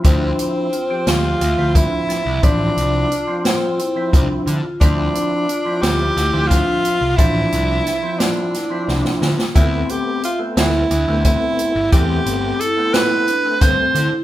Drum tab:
HH |x-x-x-x-x-x-x-|x-x-x-x-x-x-x-|x-x-x-x-x-x-x-|x-x-x-x-x-----|
SD |------o-----o-|------o-------|------o-o-o---|----o-o-o-oooo|
BD |o---------o---|o---------o---|o---------o---|o-------------|

HH |x-x-x-x-x-x-x-|x-x-x-x-x-x-x-|
SD |------o-------|------o-------|
BD |o---------o---|o---------o---|